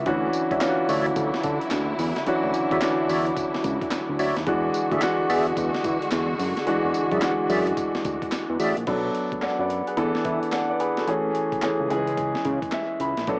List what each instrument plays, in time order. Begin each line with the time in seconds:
0.06 analog synth bass D2, string section D3 F#3 E4, grand piano E3 C#4 D4 F#4, kick, closed hi-hat
0.33 closed hi-hat, tambourine
0.51 analog synth bass C#2, tonewheel organ F#4 C#5 D5 E5, kick, closed hi-hat
0.61 grand piano E3 C#4 D4 F4, snare, clap, closed hi-hat, tambourine
0.69 grand piano F#4
0.89 analog synth bass D2, tonewheel organ F#4 C#5 D5 E5, open hi-hat, tambourine
1.06 closed hi-hat
1.16 analog synth bass D2, kick, closed hi-hat, tambourine
1.34 snare
1.43 analog synth bass D3, kick, closed hi-hat, tambourine
1.61 closed hi-hat
1.71 analog synth bass D2, snare, clap, closed hi-hat, tambourine
1.99 analog synth bass E2, open hi-hat, tambourine
2.16 snare, closed hi-hat
2.27 grand piano E3 C#4 D4 F#4, closed hi-hat
2.44 analog synth bass D2
2.54 closed hi-hat, tambourine
2.71 analog synth bass E2, tonewheel organ F#4 C#5 D5 E5, kick, closed hi-hat
2.81 grand piano E3 C#4 D4 F#4, snare, clap, closed hi-hat, tambourine
3.09 analog synth bass E2, tonewheel organ F#4 C#5 D5 E5, open hi-hat, tambourine
3.26 closed hi-hat
3.37 kick, closed hi-hat, tambourine
3.54 analog synth bass C#2, snare
3.64 analog synth bass C#2, kick, closed hi-hat, tambourine
3.81 kick, closed hi-hat
3.91 snare, clap, closed hi-hat, tambourine
4.09 analog synth bass D2
4.19 analog synth bass D2, tonewheel organ F#4 C#5 D5 E5, open hi-hat, tambourine
4.36 analog synth bass D#2, snare, closed hi-hat
4.46 analog synth bass E2, string section D3 G#3 F#4, grand piano E3 G#3 D4 F#4, kick, closed hi-hat
4.74 closed hi-hat, tambourine
4.91 analog synth bass D2, tonewheel organ F#4 G#4 D5 E5, kick, closed hi-hat
5.02 grand piano E3 G#3 D4 F#4, snare, clap, closed hi-hat, tambourine
5.29 analog synth bass E2, tonewheel organ F#4 G#4 D5 E5, open hi-hat, tambourine
5.47 closed hi-hat
5.57 analog synth bass E2, kick, closed hi-hat, tambourine
5.74 snare
5.84 analog synth bass E3, kick, closed hi-hat, tambourine
6.02 closed hi-hat
6.11 analog synth bass E2, snare, clap, closed hi-hat, tambourine
6.39 analog synth bass F#2, open hi-hat, tambourine
6.57 snare, closed hi-hat
6.67 grand piano E3 G#3 D4 F#4, closed hi-hat
6.85 analog synth bass E2
6.94 closed hi-hat, tambourine
7.12 analog synth bass F#2, tonewheel organ F#4 G#4 D5 E5, kick, closed hi-hat
7.22 grand piano E3 G#3 D4 F#4, snare, clap, closed hi-hat, tambourine
7.49 analog synth bass F#2, tonewheel organ F#4 G#4 D5 E5, open hi-hat, tambourine
7.67 closed hi-hat
7.77 kick, closed hi-hat, tambourine
7.95 analog synth bass D2, snare
8.05 analog synth bass D2, kick, closed hi-hat, tambourine
8.22 kick, closed hi-hat
8.32 snare, clap, closed hi-hat, tambourine
8.49 analog synth bass E2
8.59 analog synth bass A1, tonewheel organ F#4 G#4 D5 E5, open hi-hat, tambourine
8.77 analog synth bass A#1, closed hi-hat
8.87 analog synth bass B1, grand piano F#3 B3 D4 A4, kick, closed hi-hat, crash
9.15 closed hi-hat
9.32 analog synth bass F#2, kick, closed hi-hat
9.42 analog synth bass F#2, grand piano D5 F#5, snare, clap, closed hi-hat
9.59 analog synth bass F#2, grand piano B4 D5
9.70 closed hi-hat
9.87 grand piano G#4 B4, closed hi-hat
9.97 analog synth bass E2, grand piano E3 B3 D4 A4, kick, closed hi-hat
10.15 snare
10.25 analog synth bass E3, kick, closed hi-hat
10.43 closed hi-hat
10.52 grand piano D5 F#5, snare, clap, closed hi-hat
10.70 grand piano B4 D5
10.80 grand piano G#4 B4, closed hi-hat
10.97 grand piano F#4 A4, snare, closed hi-hat
11.07 analog synth bass A1, grand piano E3 A3 C#4 G#4, closed hi-hat
11.35 closed hi-hat
11.52 analog synth bass C#2, kick, closed hi-hat
11.62 analog synth bass C#2, grand piano E3 A3 C#4 G#4, snare, clap, closed hi-hat
11.80 analog synth bass C#2
11.90 analog synth bass C#2, grand piano E3 G#3 C#4 G#4, closed hi-hat
12.07 closed hi-hat
12.17 kick, closed hi-hat
12.35 snare
12.45 analog synth bass C#3, kick, closed hi-hat
12.62 kick, closed hi-hat
12.72 grand piano E5, snare, clap, closed hi-hat
13.00 analog synth bass C#2, grand piano B5, closed hi-hat
13.17 analog synth bass A#1, snare, closed hi-hat
13.27 analog synth bass B1, grand piano F#3 B3 D4 A4, kick, closed hi-hat